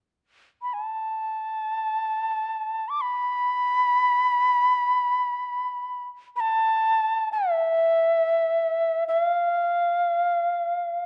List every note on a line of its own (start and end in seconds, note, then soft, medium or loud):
0.62 0.75 B5 soft
0.73 2.90 A5 medium
2.89 3.02 D6 medium
3.01 6.05 B5 medium
6.36 7.29 A5 medium
6.36 6.41 B5 medium
7.32 9.04 E5 medium
9.08 9.20 E5 medium
9.20 11.06 F5 medium